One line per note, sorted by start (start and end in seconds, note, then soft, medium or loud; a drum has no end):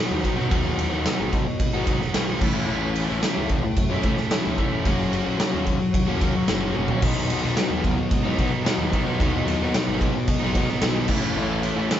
0.00 0.38 B2 medium
0.00 0.24 D#3 medium
0.00 0.14 F#3 loud
0.00 0.12 B3 medium
0.00 0.10 D#4 loud
0.00 0.24 F#4 loud
0.11 0.23 D#2 medium
0.11 0.25 F#3 medium
0.11 0.26 B3 medium
0.11 0.27 D#4 medium
0.24 0.52 D#3 medium
0.24 0.41 F#3 medium
0.24 0.39 B3 medium
0.24 0.38 D#4 medium
0.24 0.35 F#4 medium
0.24 kick medium
0.24 ride medium
0.36 0.53 B2 loud
0.36 0.49 F#3 medium
0.36 0.54 D#4 medium
0.36 0.50 F#4 medium
0.40 0.52 F#3 medium
0.40 0.53 B3 medium
0.51 0.86 D#2 loud
0.51 1.04 B2 medium
0.51 0.78 D#3 medium
0.51 0.80 F#3 medium
0.51 0.80 B3 medium
0.51 0.89 F#4 loud
0.51 kick loud
0.51 ride loud
0.55 0.81 D#4 medium
0.79 1.06 D#3 medium
0.79 0.95 F#3 medium
0.79 0.93 B3 medium
0.79 0.91 D#4 medium
0.79 ride medium
0.90 1.04 D#2 loud
0.90 1.07 D#4 medium
0.90 1.06 F#4 medium
0.94 1.06 F#3 medium
0.94 1.07 B3 medium
1.05 1.46 B2 medium
1.05 1.32 D#3 medium
1.05 1.20 F#3 loud
1.05 1.19 B3 loud
1.05 1.17 D#4 loud
1.05 1.45 F#4 medium
1.05 snare loud
1.05 ride medium
1.18 1.43 G#1 medium
1.18 1.32 F#3 medium
1.18 1.33 B3 medium
1.18 1.33 D#4 medium
1.33 muted overdriven electric guitar stroke medium
1.33 kick medium
1.33 ride medium
1.46 muted overdriven electric guitar stroke soft
1.60 2.07 G#1 medium
1.60 kick loud
1.60 ride loud
1.73 1.87 F#3 medium
1.73 1.88 B3 medium
1.73 1.89 D#4 medium
1.73 1.88 F#4 medium
1.87 2.13 D#3 medium
1.87 2.15 F#3 medium
1.87 2.15 B3 medium
1.87 2.16 D#4 medium
1.87 1.99 F#4 medium
1.87 kick medium
1.87 ride medium
2.00 muted overdriven electric guitar stroke medium
2.00 snare soft
2.13 2.41 B1 loud
2.13 2.39 B2 medium
2.13 2.40 D#3 medium
2.13 2.30 F#3 loud
2.13 2.28 B3 loud
2.13 2.40 F#4 loud
2.13 snare loud
2.13 ride loud
2.17 2.26 D#4 loud
2.27 2.40 B3 medium
2.27 2.39 D#4 medium
2.31 2.41 F#3 medium
2.41 2.53 A1 medium
2.41 2.68 A2 medium
2.41 2.69 E3 loud
2.41 2.57 A3 loud
2.41 2.57 C#4 medium
2.41 kick loud
2.41 crash loud
2.45 2.54 E4 loud
2.55 2.70 A3 medium
2.55 2.72 C#4 medium
2.55 2.72 E4 medium
2.67 3.04 A1 loud
2.67 3.23 A2 medium
2.67 3.20 E3 loud
2.67 3.09 C#4 loud
2.67 3.07 E4 loud
2.71 2.95 E3 medium
2.71 2.96 A3 medium
2.71 2.98 C#4 loud
2.71 2.99 E4 loud
2.95 3.25 E3 medium
2.95 3.12 A3 medium
2.95 3.12 C#4 medium
2.95 ride medium
3.00 3.09 E4 medium
3.10 3.22 A1 medium
3.10 3.25 A3 medium
3.10 3.26 C#4 medium
3.10 3.27 E4 medium
3.20 3.89 A2 medium
3.20 3.62 E3 loud
3.20 3.63 C#4 loud
3.20 3.62 E4 loud
3.20 snare loud
3.20 ride loud
3.25 3.64 A2 medium
3.25 3.50 E3 loud
3.25 3.41 A3 loud
3.25 3.40 C#4 loud
3.25 3.37 E4 loud
3.37 3.72 C#2 medium
3.37 3.51 C#4 medium
3.37 3.50 E4 medium
3.42 3.49 A3 medium
3.49 muted overdriven electric guitar stroke soft
3.49 kick medium
3.49 ride medium
3.63 muted overdriven electric guitar stroke medium
3.76 4.00 F#2 loud
3.76 kick loud
3.76 ride loud
3.92 4.05 A3 medium
3.92 4.07 C#4 medium
3.92 4.08 E4 medium
4.03 4.39 A2 medium
4.03 4.31 E3 medium
4.03 4.32 A3 medium
4.03 kick loud
4.03 ride medium
4.08 4.34 C#4 medium
4.08 4.34 E4 medium
4.17 muted overdriven electric guitar stroke soft
4.17 snare soft
4.31 4.72 A2 medium
4.31 4.56 E3 medium
4.31 4.47 A3 medium
4.31 4.46 C#4 medium
4.31 snare loud
4.31 ride loud
4.35 4.44 E4 loud
4.45 4.57 C#2 medium
4.45 4.57 A3 medium
4.45 4.59 C#4 medium
4.45 4.59 E4 medium
4.58 4.83 E3 medium
4.58 4.74 A3 medium
4.58 4.73 C#4 medium
4.58 4.71 E4 loud
4.58 kick medium
4.58 ride medium
4.72 4.87 A2 medium
4.72 4.85 A3 medium
4.72 4.86 C#4 medium
4.72 4.84 E4 medium
4.84 5.20 F#1 loud
4.84 5.11 F#3 medium
4.84 5.12 A#3 medium
4.84 5.13 C#4 medium
4.84 5.14 F#4 loud
4.84 kick loud
4.84 ride loud
5.12 5.37 F#3 medium
5.12 5.27 A#3 medium
5.12 5.26 C#4 medium
5.12 5.24 F#4 medium
5.12 ride medium
5.25 5.38 A#1 medium
5.25 5.39 A#3 medium
5.25 5.40 C#4 medium
5.25 5.41 F#4 medium
5.39 5.65 F#3 medium
5.39 5.55 A#3 medium
5.39 5.54 C#4 loud
5.39 5.52 F#4 loud
5.39 snare loud
5.39 ride loud
5.53 5.77 D#2 medium
5.53 5.66 A#3 medium
5.53 5.66 C#4 medium
5.53 5.66 F#4 medium
5.66 muted overdriven electric guitar stroke medium
5.66 kick medium
5.66 ride medium
5.80 muted overdriven electric guitar stroke medium
5.94 6.41 D#2 medium
5.94 kick loud
5.94 ride loud
6.07 6.20 A#3 medium
6.07 6.21 C#4 medium
6.07 6.22 F#4 medium
6.20 6.47 F#3 medium
6.20 6.48 A#3 medium
6.20 6.49 C#4 medium
6.20 6.50 F#4 loud
6.20 kick medium
6.20 ride medium
6.35 muted overdriven electric guitar stroke medium
6.48 6.72 F#1 loud
6.48 6.74 F#3 medium
6.48 6.64 A#3 medium
6.48 6.63 C#4 medium
6.48 6.61 F#4 medium
6.48 snare loud
6.48 ride loud
6.62 6.76 A#3 medium
6.62 6.76 C#4 medium
6.62 6.78 F#4 medium
6.75 6.87 F#1 medium
6.75 7.01 F#3 medium
6.75 6.91 A#3 medium
6.75 6.90 C#4 medium
6.75 high tom medium
6.79 6.88 F#4 loud
6.88 7.02 C#4 medium
6.88 7.01 F#4 medium
6.88 floor tom medium
6.93 7.03 A#3 medium
7.02 7.38 B1 medium
7.02 7.55 B2 medium
7.02 7.27 D#3 medium
7.02 7.29 F#3 medium
7.02 7.30 B3 medium
7.02 7.31 D#4 loud
7.02 kick loud
7.02 crash loud
7.28 7.57 B2 medium
7.28 7.55 D#3 medium
7.28 7.44 F#3 medium
7.28 7.44 B3 medium
7.28 7.41 D#4 loud
7.28 ride medium
7.42 7.55 B1 medium
7.42 7.58 F#3 medium
7.42 7.58 B3 medium
7.42 7.59 D#4 medium
7.56 7.97 B2 medium
7.56 7.82 D#3 loud
7.56 7.71 F#3 loud
7.56 7.69 B3 loud
7.56 7.67 D#4 loud
7.56 snare loud
7.56 ride loud
7.69 8.05 D#2 medium
7.69 7.83 F#3 medium
7.69 7.83 B3 medium
7.69 7.83 D#4 medium
7.84 8.10 B2 loud
7.84 8.11 F#3 loud
7.84 8.11 B3 loud
7.84 muted overdriven electric guitar stroke soft
7.84 kick medium
7.84 ride medium
7.97 muted overdriven electric guitar stroke medium
8.11 8.34 G#2 medium
8.11 8.37 B2 medium
8.11 8.38 F#3 medium
8.11 8.39 B3 medium
8.11 kick loud
8.11 ride loud
8.23 8.37 F#3 medium
8.23 8.38 B3 medium
8.23 8.39 D#4 medium
8.37 8.65 B2 loud
8.37 8.73 B2 medium
8.37 8.63 D#3 medium
8.37 8.64 F#3 loud
8.37 8.65 B3 medium
8.37 8.66 D#4 medium
8.37 kick medium
8.37 ride medium
8.52 muted overdriven electric guitar stroke medium
8.64 9.05 B2 medium
8.64 8.88 D#3 medium
8.64 8.79 F#3 loud
8.64 8.77 B3 loud
8.64 8.75 D#4 loud
8.64 snare loud
8.64 ride loud
8.76 8.90 D#2 medium
8.76 8.90 F#3 medium
8.76 8.91 B3 medium
8.76 8.92 D#4 medium
8.89 9.18 B2 medium
8.89 9.18 D#3 medium
8.89 9.07 F#3 medium
8.89 9.06 B3 medium
8.89 9.03 D#4 medium
8.89 kick medium
8.89 ride medium
9.04 9.22 B2 medium
9.04 9.18 F#3 medium
9.04 9.19 B3 medium
9.04 9.20 D#4 medium
9.18 9.55 D#2 loud
9.18 9.71 B2 medium
9.18 9.45 D#3 medium
9.18 9.46 F#3 loud
9.18 9.47 B3 medium
9.18 9.48 D#4 medium
9.18 kick loud
9.18 ride loud
9.46 9.73 B2 medium
9.46 9.72 D#3 medium
9.46 9.61 F#3 medium
9.46 9.60 B3 loud
9.46 9.57 D#4 medium
9.46 ride medium
9.58 9.71 D#2 loud
9.58 9.73 F#3 medium
9.58 9.74 B3 medium
9.58 9.75 D#4 medium
9.72 10.14 B2 loud
9.72 9.99 D#3 loud
9.72 9.88 F#3 loud
9.72 9.86 B3 loud
9.72 9.85 D#4 loud
9.72 snare loud
9.72 ride loud
9.86 10.10 G#1 medium
9.86 9.99 F#3 medium
9.86 10.00 B3 medium
9.86 10.00 D#4 medium
10.01 10.28 B2 loud
10.01 10.28 F#3 loud
10.01 10.28 B3 loud
10.01 muted overdriven electric guitar stroke soft
10.01 kick medium
10.01 ride medium
10.16 muted overdriven electric guitar stroke medium
10.27 10.74 G#1 medium
10.27 10.54 B2 medium
10.27 10.54 F#3 medium
10.27 10.54 B3 medium
10.27 kick loud
10.27 ride loud
10.40 10.55 F#3 medium
10.40 10.56 B3 medium
10.40 10.57 D#4 medium
10.55 10.81 B2 medium
10.55 10.82 D#3 medium
10.55 10.82 F#3 medium
10.55 10.83 B3 medium
10.55 10.84 D#4 medium
10.55 kick medium
10.55 ride medium
10.69 muted overdriven electric guitar stroke medium
10.69 snare soft
10.81 11.09 B1 loud
10.81 11.07 B2 medium
10.81 11.08 D#3 medium
10.81 10.97 F#3 medium
10.81 10.95 B3 loud
10.81 10.94 D#4 loud
10.81 snare loud
10.81 ride loud
10.95 11.09 F#3 medium
10.95 11.08 B3 medium
10.95 11.07 D#4 medium
11.08 11.21 A1 medium
11.08 11.35 A2 loud
11.08 11.36 E3 loud
11.08 11.26 A3 loud
11.08 11.24 C#4 loud
11.08 11.22 E4 loud
11.08 kick loud
11.08 crash loud
11.22 11.37 A3 medium
11.22 11.38 C#4 medium
11.22 11.38 E4 medium
11.36 11.71 A1 loud
11.36 11.91 A2 medium
11.36 11.63 E3 loud
11.36 11.64 A3 medium
11.36 11.65 C#4 medium
11.36 11.66 E4 loud
11.63 11.90 A2 medium
11.63 11.92 E3 medium
11.63 11.81 A3 medium
11.63 11.80 C#4 medium
11.63 11.78 E4 medium
11.63 ride medium
11.77 11.88 A1 medium
11.77 11.93 C#4 medium
11.77 11.95 E4 medium
11.81 11.93 A3 medium
11.91 12.00 A2 medium
11.91 12.00 E3 medium
11.91 12.00 A3 medium
11.91 12.00 C#4 loud
11.91 snare loud
11.91 ride loud
11.95 12.00 E4 loud